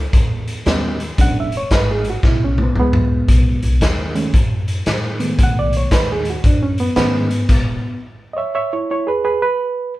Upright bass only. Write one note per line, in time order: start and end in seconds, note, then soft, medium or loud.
0.13 0.57 E2 medium
0.66 1.09 D#2 medium
1.18 1.62 E1 medium
1.71 2.14 G#1 medium
2.24 2.67 B1 medium
2.77 3.20 C#2 medium
3.28 3.57 B1 medium
3.63 3.78 B1 medium
3.81 4.25 D#2 medium
4.33 4.77 F#2 medium
4.86 5.30 A2 medium
5.39 5.83 B1 medium
5.91 6.35 D#2 medium
6.44 6.88 F#2 medium
6.97 7.40 G#2 medium
7.49 7.77 E1 medium